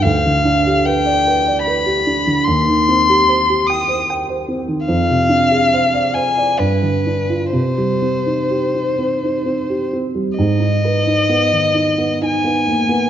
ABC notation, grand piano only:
X:1
M:3/4
L:1/16
Q:1/4=69
K:Cm
V:1 name="Grand piano"
D,, D, D G =B d B d B G D D, | E,, E, C G c G g c g c C E, | F,, C, D A c d c d G,, D, D F | C, G, C E G E C E C G C G, |
[K:G#m] G,, D B D B, D, D B, D B, A, B, |]